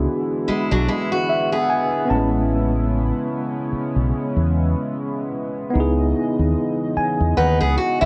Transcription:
Already playing: analog synth pad D3 E3 G#3 B3 E4, tine electric piano B3 D4 F#4 G#4
0.48 steel-string acoustic guitar G#3 E4, muted fingered electric bass stroke
0.71 fingered electric bass B1, steel-string acoustic guitar F#3 D4
0.88 steel-string acoustic guitar G#3 E4
1.12 steel-string acoustic guitar F#4
1.29 tine electric piano E5
1.52 steel-string acoustic guitar B3 G#4, tine electric piano F#5
1.70 tine electric piano G#5
2.05 tine electric piano B3 C#4
2.10 fingered electric bass A1, analog synth pad C#3 G#3 C#4, tine electric piano E4 A5
2.15 tine electric piano G#3
3.72 muted fingered electric bass stroke
3.96 fingered electric bass B1
4.13 muted fingered electric bass stroke
4.36 fingered electric bass E2
5.70 tine electric piano B3 D#4
5.75 fingered electric bass C#2, analog synth pad C#3 E3 D#5, tine electric piano E4
5.80 tine electric piano G#4
6.39 fingered electric bass D#2
6.97 tine electric piano G#5, muted fingered electric bass stroke
7.20 fingered electric bass E2
7.37 fingered electric bass D#2, steel-string acoustic guitar D#4 B4, tine electric piano F#5
7.61 fingered electric bass C#2, steel-string acoustic guitar B3 G#4
7.78 steel-string acoustic guitar F#4
8.01 fingered electric bass B1, steel-string acoustic guitar G#3 E4, tine electric piano E5

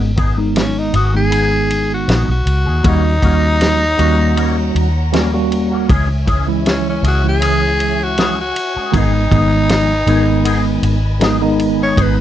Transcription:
Already playing: fingered electric bass G#1, tine electric piano G#3 B3 C#4
0.00 muted clean electric guitar stroke
0.16 clean electric guitar B3 D#4 G#4, kick, ride
0.37 tine electric piano D#3 G#3 B3 D#4, muted clean electric guitar stroke
0.55 muted clean electric guitar stroke, snare, ride
0.60 tenor saxophone C#4
0.79 tenor saxophone D#4
0.92 fingered electric bass G#1, clean electric guitar B3 D#4 G#4, tenor saxophone F#4, ride
1.13 tine electric piano D#3 G#3 B3 D#4, tenor saxophone G#4, muted clean electric guitar stroke
1.30 clean electric guitar B3 D#4 G#4, ride
1.51 muted clean electric guitar stroke
1.69 muted clean electric guitar stroke, ride
1.94 tenor saxophone F#4
2.07 fingered electric bass A#1, clean electric guitar B3 D#4 G#4, snare, ride
2.28 fingered electric bass B1, tenor saxophone F#4, muted clean electric guitar stroke
2.45 fingered electric bass C#2, muted clean electric guitar stroke, ride
2.65 fingered electric bass D#2, clean electric guitar D#4 G#4
2.83 fingered electric bass D#2, clean electric guitar G3 A#3 C#4 F#4, tine electric piano G3 A#3 C#4 F#4, string section C#5 F#5 A#5, kick, ride
2.88 tenor saxophone D#4
3.04 muted clean electric guitar stroke
3.21 fingered electric bass D#2, clean electric guitar G3 A#3 C#4 F#4, tine electric piano G3 A#3 C#4 F#4, kick, ride
3.42 muted clean electric guitar stroke
3.60 muted clean electric guitar stroke, snare, ride
3.97 fingered electric bass D#2, clean electric guitar G3 A#3 C#4 F#4, tine electric piano G3 A#3 C#4 F#4, ride
4.18 muted clean electric guitar stroke
4.35 clean electric guitar G3 A#3 C#4 F#4, ride
4.56 muted clean electric guitar stroke
4.73 fingered electric bass D#2, muted clean electric guitar stroke, ride
5.11 clean electric guitar G3 A#3 C#4 F#4, tine electric piano G3 A#3 C#4 F#4, snare, ride
5.32 tine electric piano G3 A#3 C#4 F#4, muted clean electric guitar stroke
5.50 muted clean electric guitar stroke, ride
5.70 clean electric guitar A#3 C#4 F#4
5.88 fingered electric bass C#2, clean electric guitar E3 G#3 C#4 G#4, string section C#5 E5 G#5, kick, ride
6.08 muted clean electric guitar stroke
6.26 clean electric guitar E3 G#3 C#4 G#4, kick, ride
6.47 tine electric piano E3 G#3 C#4 E4, muted clean electric guitar stroke
6.64 muted clean electric guitar stroke, snare, ride
6.69 tenor saxophone C#4
6.90 tenor saxophone C#4
7.02 fingered electric bass C#2, clean electric guitar E3 G#3 C#4 G#4, ride
7.08 tenor saxophone F#4
7.23 tine electric piano E3 G#3 C#4 E4, muted clean electric guitar stroke
7.29 tenor saxophone G#4
7.40 clean electric guitar E3 G#3 C#4 G#4, ride
7.62 muted clean electric guitar stroke
7.79 muted clean electric guitar stroke, ride
8.04 tenor saxophone F#4
8.16 clean electric guitar E3 G#3 C#4 G#4, snare, ride
8.37 muted clean electric guitar stroke
8.41 tenor saxophone F#4
8.55 muted clean electric guitar stroke, ride
8.75 clean electric guitar G#3 C#4 G#4, muted fingered electric bass stroke
8.92 fingered electric bass G#1, tine electric piano D#3 G#3 B3 D#4, clean electric guitar D#3 B3 D#4 G#4, string section B4 D#5, kick, ride
8.98 tenor saxophone D#4
9.14 muted clean electric guitar stroke
9.30 fingered electric bass G#1, tine electric piano D#3 G#3 B3 D#4, clean electric guitar D#3 B3 D#4 G#4, kick, ride
9.52 muted clean electric guitar stroke
9.69 snare, ride
10.06 fingered electric bass G#1, clean electric guitar D#3 B3 D#4 G#4, tine electric piano D#3 G#3 B3 D#4, ride
10.27 muted clean electric guitar stroke
10.44 clean electric guitar D#3 B3 D#4 G#4, ride
10.65 muted clean electric guitar stroke
10.82 fingered electric bass G#1, muted clean electric guitar stroke, ride
11.19 tine electric piano D#3 G#3 B3 D#4, clean electric guitar D#3 B3 D#4 G#4, snare, ride
11.41 tine electric piano D#3 G#3 B3 D#4, muted clean electric guitar stroke
11.58 muted clean electric guitar stroke, ride
11.78 clean electric guitar B3 D#4 G#4
11.83 tenor saxophone C#5
11.96 fingered electric bass G#1, clean electric guitar D#3 B3 D#4 G#4, string section A#5, kick, ride
12.02 tenor saxophone B4
12.17 muted clean electric guitar stroke

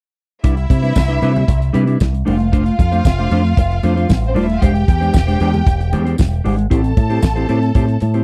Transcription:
0.43 picked electric bass C2, clean electric guitar G3 D4 E4 B4, string section E4 E5, kick, closed hi-hat
0.57 muted clean electric guitar stroke, closed hi-hat
0.70 picked electric bass C3, muted clean electric guitar stroke, kick, closed hi-hat, muted conga
0.82 clean electric guitar G3 D4 E4 B4, closed hi-hat
0.96 picked electric bass C2, kick, snare, tambourine, high conga
1.08 clean electric guitar G3 D4 E4 B4, closed hi-hat
1.22 picked electric bass C3, clean electric guitar G3 D4 E4 B4, closed hi-hat, muted conga
1.34 muted clean electric guitar stroke, closed hi-hat, low conga
1.47 picked electric bass C2, muted clean electric guitar stroke, kick, closed hi-hat, muted conga
1.60 muted clean electric guitar stroke, closed hi-hat
1.73 picked electric bass C3, clean electric guitar G3 D4 E4 B4, closed hi-hat, muted conga
1.86 clean electric guitar G3 D4 E4 B4, closed hi-hat
2.00 picked electric bass C2, kick, snare, tambourine, high conga
2.12 muted clean electric guitar stroke, closed hi-hat
2.25 picked electric bass F1, clean electric guitar A3 D4 F4 C5, string section F4 F5, open hi-hat, high conga
2.39 muted clean electric guitar stroke, closed hi-hat
2.52 clean electric guitar A3 D4 F4 C5, kick, closed hi-hat
2.66 muted clean electric guitar stroke, closed hi-hat
2.78 picked electric bass F2, muted clean electric guitar stroke, kick, closed hi-hat, muted conga
2.92 clean electric guitar A3 D4 F4 C5, closed hi-hat
3.05 picked electric bass F1, kick, snare, tambourine, high conga
3.18 clean electric guitar A3 D4 F4 C5, closed hi-hat
3.31 picked electric bass F2, clean electric guitar A3 D4 F4 C5, closed hi-hat
3.44 muted clean electric guitar stroke, closed hi-hat
3.57 picked electric bass F1, muted clean electric guitar stroke, kick, closed hi-hat, muted conga
3.71 muted clean electric guitar stroke, closed hi-hat
3.83 picked electric bass F2, clean electric guitar A3 D4 F4 C5, closed hi-hat, muted conga
3.96 clean electric guitar A3 D4 F4 C5, closed hi-hat
4.09 picked electric bass A1, muted clean electric guitar stroke, kick, snare, tambourine, high conga
4.22 muted clean electric guitar stroke, closed hi-hat
4.27 string section C4 C5
4.34 picked electric bass D#1, clean electric guitar A3 D4 F4 C5, string section D4 D5, open hi-hat, high conga
4.44 string section E4 E5
4.48 muted clean electric guitar stroke, closed hi-hat
4.53 string section F4 F5
4.60 picked electric bass E1, clean electric guitar G#3 D4 G4 C5, string section G4 G5, kick, closed hi-hat
4.74 muted clean electric guitar stroke, closed hi-hat
4.88 picked electric bass E2, muted clean electric guitar stroke, kick, closed hi-hat, muted conga
5.01 clean electric guitar G#3 D4 G4 C5, closed hi-hat
5.14 picked electric bass E1, kick, snare, tambourine, high conga
5.27 clean electric guitar G#3 D4 G4 C5, closed hi-hat
5.40 picked electric bass E2, clean electric guitar G#3 D4 G4 C5, closed hi-hat
5.53 muted clean electric guitar stroke, closed hi-hat, low conga
5.66 picked electric bass E1, muted clean electric guitar stroke, kick, closed hi-hat, muted conga
5.79 muted clean electric guitar stroke, closed hi-hat
5.93 picked electric bass E2, clean electric guitar G#3 D4 G4 C5, closed hi-hat, muted conga
6.05 clean electric guitar G#3 D4 G4 C5, closed hi-hat
6.18 picked electric bass E1, muted clean electric guitar stroke, kick, snare, tambourine, high conga
6.32 muted clean electric guitar stroke, closed hi-hat
6.44 picked electric bass G#1, clean electric guitar G#3 D4 G4 C5, open hi-hat, high conga
6.58 muted clean electric guitar stroke, closed hi-hat
6.70 picked electric bass A1, clean electric guitar C4 E4 G4 C5, string section A4 A5, kick, closed hi-hat
6.83 muted clean electric guitar stroke, closed hi-hat
6.97 picked electric bass A2, muted clean electric guitar stroke, kick, closed hi-hat, muted conga
7.10 clean electric guitar C4 E4 G4 C5, closed hi-hat
7.22 picked electric bass A1, kick, snare, tambourine, high conga
7.36 clean electric guitar C4 E4 G4 C5, closed hi-hat
7.49 picked electric bass A2, clean electric guitar C4 E4 G4 C5, closed hi-hat, muted conga
7.61 muted clean electric guitar stroke, closed hi-hat
7.75 picked electric bass A2, clean electric guitar C4 E4 G4 C5, kick, closed hi-hat, muted conga
7.88 muted clean electric guitar stroke, closed hi-hat
8.00 picked electric bass A2, muted clean electric guitar stroke, closed hi-hat, muted conga
8.14 clean electric guitar C4 E4 G4 C5, closed hi-hat

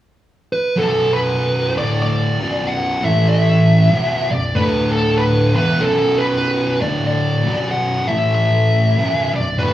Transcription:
0.53 lead electric guitar B4
0.77 distorted electric guitar B1 F#2 B2, lead electric guitar A4
1.14 lead electric guitar B4
1.76 distorted electric guitar D2 A2 D3, lead electric guitar D5
2.03 lead electric guitar D5
2.39 distorted electric guitar B1 F#2 B2
2.67 lead electric guitar F#5
3.03 distorted electric guitar A2 E3 A3, lead electric guitar E5
3.29 lead electric guitar E5
3.91 distorted electric guitar B1 F#2 B2
4.30 distorted electric guitar B1 F#2, lead electric guitar D5
4.55 distorted electric guitar D2 A2 D3, lead electric guitar B4
4.92 lead electric guitar A4
5.18 lead electric guitar B4
5.54 distorted electric guitar E2 B2 E3, lead electric guitar B4
5.81 distorted electric guitar B1 F#2 B2, lead electric guitar A4
6.18 lead electric guitar B4
6.81 distorted electric guitar D2 A2 D3, lead electric guitar D5
7.07 lead electric guitar D5
7.44 distorted electric guitar B1 F#2 B2
7.71 lead electric guitar F#5
8.08 distorted electric guitar A2 E3 A3, lead electric guitar E5
8.35 lead electric guitar E5
8.97 distorted electric guitar B1 F#2 B2
9.33 distorted electric guitar B1 F#2, lead electric guitar D5
9.59 distorted electric guitar D2 A2 D3, lead electric guitar B4

